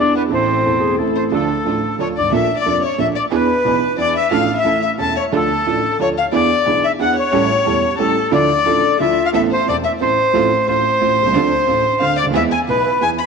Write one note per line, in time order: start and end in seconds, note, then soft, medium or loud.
0.00 0.28 E2 soft
0.00 0.26 E3 soft
0.00 0.28 B3 soft
0.00 0.13 D4 medium
0.00 0.29 D4 soft
0.00 0.29 E4 soft
0.00 0.29 G#4 soft
0.00 0.30 G#4 soft
0.00 0.14 D5 medium
0.15 0.22 B3 medium
0.15 0.23 B4 medium
0.28 0.62 A1 medium
0.28 0.62 A2 medium
0.28 0.60 E3 medium
0.28 0.62 A3 soft
0.28 0.62 C4 medium
0.28 0.62 E4 medium
0.28 0.62 A4 medium
0.32 0.95 C4 medium
0.32 0.63 A4 medium
0.32 0.96 C5 medium
0.62 0.96 E1 soft
0.62 0.96 E2 soft
0.62 0.94 E3 soft
0.62 0.96 A3 soft
0.62 0.96 C4 soft
0.62 0.96 E4 soft
0.62 0.81 E4 medium
0.62 0.96 A4 soft
0.66 0.97 A4 soft
0.80 1.00 G#4 medium
0.96 1.30 A1 soft
0.96 1.30 A2 soft
0.96 1.29 E3 soft
0.96 1.30 A3 soft
0.96 1.30 C4 soft
0.96 1.30 E4 soft
0.96 1.32 A4 medium
0.96 1.30 A4 soft
1.00 1.31 A4 soft
1.16 1.23 C5 medium
1.16 1.24 C5 medium
1.31 1.46 D2 medium
1.31 1.46 D3 medium
1.31 1.46 F3 medium
1.31 1.46 A3 medium
1.31 1.46 D4 medium
1.31 1.46 F4 medium
1.31 1.95 A4 medium
1.31 1.46 A4 medium
1.31 1.96 A4 medium
1.65 1.79 A1 soft
1.65 1.80 A2 soft
1.65 1.79 F3 soft
1.65 1.79 A3 soft
1.65 1.79 D4 soft
1.65 1.80 D4 soft
1.65 1.80 F4 soft
1.65 1.80 A4 soft
1.98 2.13 D2 soft
1.98 2.13 D3 soft
1.98 2.13 F3 soft
1.98 2.13 A3 soft
1.98 2.13 D4 soft
1.98 2.13 F4 soft
1.98 2.13 A4 soft
1.98 2.07 C#5 medium
1.98 2.08 C#5 medium
2.17 2.24 G1 soft
2.17 2.32 D5 medium
2.23 2.28 G#1 medium
2.28 2.32 A1 medium
2.32 2.46 A#1 medium
2.32 2.46 A#2 medium
2.32 2.46 F3 medium
2.32 2.46 A#3 medium
2.32 2.46 D4 medium
2.32 2.46 A4 medium
2.32 2.56 E5 medium
2.32 2.57 E5 medium
2.58 2.81 D5 medium
2.58 2.82 D5 medium
2.65 2.80 F1 medium
2.65 2.80 F2 medium
2.65 2.80 F3 soft
2.65 2.79 A#3 soft
2.65 2.80 A#3 soft
2.65 2.79 D4 soft
2.65 2.80 D4 soft
2.65 2.80 A4 soft
2.83 2.98 C#5 medium
2.83 2.99 C#5 medium
2.98 3.13 A#1 medium
2.98 3.13 A#2 soft
2.98 3.12 F3 soft
2.98 3.12 A#3 soft
2.98 3.13 A#3 soft
2.98 3.13 D4 soft
2.98 3.13 A4 soft
2.98 3.13 A4 medium
2.98 3.07 E5 medium
2.98 3.08 E5 medium
3.16 3.23 D5 medium
3.16 3.25 D5 medium
3.31 3.46 E2 medium
3.31 3.46 E3 medium
3.31 3.46 B3 medium
3.31 3.46 D4 medium
3.31 3.46 E4 medium
3.31 3.46 G#4 medium
3.31 3.94 B4 medium
3.31 3.96 B4 medium
3.64 3.79 B1 medium
3.64 3.79 B2 medium
3.64 3.79 E3 soft
3.64 3.79 B3 soft
3.64 3.79 D4 soft
3.64 3.79 E4 soft
3.64 3.79 G#4 medium
3.97 4.12 E2 medium
3.97 4.12 E3 soft
3.97 4.12 B3 soft
3.97 4.12 D4 soft
3.97 4.12 E4 soft
3.97 4.12 G#4 soft
3.97 4.12 G#4 medium
3.97 4.14 D5 medium
3.97 4.15 D5 medium
4.16 4.31 E5 medium
4.16 4.33 E5 medium
4.31 4.45 A1 medium
4.31 4.45 A2 medium
4.31 4.45 F3 medium
4.31 4.45 A3 medium
4.31 4.45 D4 medium
4.31 4.45 F4 medium
4.31 4.45 A4 medium
4.31 4.46 A4 medium
4.31 4.55 F5 medium
4.31 4.58 F5 medium
4.56 4.80 E5 medium
4.56 4.82 E5 medium
4.64 4.79 A1 medium
4.64 4.79 A2 soft
4.64 4.79 E3 soft
4.64 4.79 A3 soft
4.64 4.79 C#4 soft
4.64 4.79 E4 soft
4.64 4.79 A4 soft
4.82 4.90 E5 medium
4.82 4.92 E5 medium
4.98 5.13 E1 soft
4.98 5.13 E2 soft
4.98 5.13 E3 soft
4.98 5.13 A3 soft
4.98 5.13 C#4 soft
4.98 5.13 E4 soft
4.98 5.13 A4 soft
4.98 5.13 A4 medium
4.98 5.15 A5 medium
5.02 5.18 A5 medium
5.17 5.24 C#5 medium
5.17 5.26 C#5 medium
5.32 5.47 D2 medium
5.32 5.47 D3 medium
5.32 5.47 F3 medium
5.32 5.47 A3 medium
5.32 5.47 D4 medium
5.32 5.47 F4 medium
5.32 5.47 A4 medium
5.32 5.97 A4 medium
5.66 5.80 A1 medium
5.66 5.80 A2 soft
5.66 5.80 F3 soft
5.66 5.80 A3 soft
5.66 5.80 D4 soft
5.66 5.81 D4 soft
5.66 5.80 F4 soft
5.66 5.81 A4 soft
6.00 6.14 D2 medium
6.00 6.14 D3 soft
6.00 6.14 F3 soft
6.00 6.14 A3 soft
6.00 6.14 D4 soft
6.00 6.14 F4 soft
6.00 6.14 A4 soft
6.00 6.14 A4 medium
6.00 6.09 C#5 medium
6.00 6.10 C#5 medium
6.18 6.25 F5 medium
6.18 6.27 F5 medium
6.32 6.47 E2 medium
6.32 6.47 E3 medium
6.32 6.47 B3 medium
6.32 6.47 D4 medium
6.32 6.47 E4 medium
6.32 6.47 G#4 medium
6.32 6.80 D5 medium
6.32 6.86 D5 medium
6.66 6.80 B1 medium
6.66 6.80 B2 medium
6.66 6.80 E3 soft
6.66 6.80 B3 soft
6.66 6.80 D4 soft
6.66 6.80 E4 soft
6.66 6.80 G#4 medium
6.84 6.91 E5 medium
6.84 6.92 E5 medium
6.99 7.14 E2 soft
6.99 7.14 E3 medium
6.99 7.14 B3 soft
6.99 7.13 D4 soft
6.99 7.14 D4 soft
6.99 7.13 E4 soft
6.99 7.13 G#4 medium
6.99 7.14 G#4 medium
6.99 7.16 F#5 medium
7.16 7.95 C#5 medium
7.16 7.97 C#5 medium
7.32 7.47 A1 medium
7.32 7.47 A2 medium
7.32 7.47 G3 medium
7.32 7.46 C#4 medium
7.32 7.47 C#4 medium
7.32 7.47 E4 medium
7.32 7.46 G4 medium
7.32 7.47 A4 medium
7.65 7.80 E1 medium
7.65 7.80 E2 medium
7.65 7.80 G3 medium
7.65 7.79 C#4 medium
7.65 7.80 C#4 soft
7.65 7.80 E4 soft
7.65 7.80 G4 soft
7.65 7.80 A4 medium
7.98 8.13 A1 medium
7.98 8.13 A2 medium
7.98 8.13 G3 soft
7.98 8.13 C#4 medium
7.98 8.13 C#4 soft
7.98 8.13 E4 soft
7.98 8.13 G4 soft
7.98 8.30 A4 medium
7.98 8.13 A4 medium
7.98 8.13 A4 soft
7.98 8.32 A4 medium
8.31 8.46 D2 medium
8.31 8.46 D3 medium
8.31 8.46 F3 medium
8.31 8.46 D4 medium
8.31 8.46 E4 medium
8.31 8.46 F4 medium
8.31 8.46 A4 medium
8.31 8.96 D5 medium
8.31 8.97 D5 medium
8.65 8.80 A1 medium
8.65 8.80 A2 medium
8.65 8.80 F3 soft
8.65 8.80 D4 soft
8.65 8.80 D4 medium
8.65 8.80 E4 soft
8.65 8.80 F4 medium
8.65 8.80 A4 medium
8.65 9.01 A4 medium
8.99 9.14 D2 medium
8.99 9.14 D3 medium
8.99 9.14 F3 soft
8.99 9.14 D4 medium
8.99 9.14 D4 soft
8.99 9.14 E4 soft
8.99 9.34 F4 medium
8.99 9.14 F4 medium
8.99 9.15 A4 soft
8.99 9.24 E5 medium
8.99 9.27 E5 medium
9.26 9.29 F5 medium
9.33 9.48 A1 medium
9.33 9.48 A2 medium
9.33 9.48 E3 medium
9.33 9.47 B3 medium
9.33 9.48 B3 medium
9.33 9.47 C4 medium
9.33 9.48 C4 medium
9.33 9.48 A4 medium
9.33 9.42 E5 medium
9.52 9.67 C5 medium
9.67 9.82 E1 medium
9.67 9.82 E2 medium
9.67 9.82 B3 soft
9.67 9.82 C4 soft
9.67 9.82 A4 medium
9.67 9.76 D5 medium
9.84 9.92 E5 medium
10.00 10.15 A1 medium
10.00 10.15 A2 medium
10.00 10.15 B3 medium
10.00 10.15 C4 soft
10.00 10.15 A4 medium
10.00 10.63 C5 medium
10.00 10.67 C5 medium
10.33 10.48 A1 medium
10.33 10.48 A2 medium
10.33 10.48 F3 medium
10.33 10.48 A3 medium
10.33 10.48 C4 medium
10.33 10.48 F4 medium
10.33 10.48 A4 medium
10.67 10.81 A1 medium
10.67 10.82 A2 medium
10.67 10.81 A3 medium
10.67 10.81 C4 soft
10.67 10.81 F4 medium
10.67 11.97 C5 medium
10.67 12.05 C5 medium
11.00 11.15 A1 medium
11.00 11.15 A2 medium
11.00 11.14 A3 medium
11.00 11.15 C4 soft
11.00 11.15 F4 medium
11.22 11.26 B1 medium
11.27 11.30 C2 medium
11.32 11.35 C#2 medium
11.32 11.49 D3 medium
11.32 11.49 F3 medium
11.32 11.48 C4 medium
11.32 11.49 C4 medium
11.32 11.48 D4 medium
11.32 11.48 F4 medium
11.36 11.49 D2 medium
11.36 11.49 D4 medium
11.36 11.49 A4 medium
11.67 11.82 A1 medium
11.67 11.82 A2 medium
11.67 11.81 C4 medium
11.67 11.81 D4 soft
11.67 11.81 F4 medium
12.00 12.15 D2 medium
12.00 12.15 D3 medium
12.00 12.14 C4 medium
12.00 12.14 D4 soft
12.00 12.14 F4 medium
12.00 12.17 F5 medium
12.00 12.17 F5 loud
12.17 12.25 D5 medium
12.17 12.26 D5 medium
12.23 12.27 C#2 medium
12.23 12.30 D2 medium
12.30 12.34 D#2 medium
12.30 12.48 G#3 medium
12.30 12.48 B3 medium
12.30 12.48 E4 medium
12.30 12.48 G#4 medium
12.34 12.48 E2 medium
12.34 12.48 E3 medium
12.34 12.48 B3 medium
12.34 12.49 G#4 medium
12.34 12.43 E5 medium
12.34 12.44 E5 medium
12.51 12.59 G#5 medium
12.51 12.60 G#5 loud
12.67 12.82 B1 medium
12.67 12.82 B2 medium
12.67 12.82 B3 medium
12.67 12.82 E4 soft
12.67 12.82 G#4 medium
12.67 13.00 B4 medium
12.67 13.03 B4 medium
13.01 13.15 E2 soft
13.01 13.16 E3 medium
13.01 13.15 B3 soft
13.01 13.15 E4 soft
13.01 13.15 G#4 medium
13.01 13.10 G#5 medium
13.19 13.26 B5 medium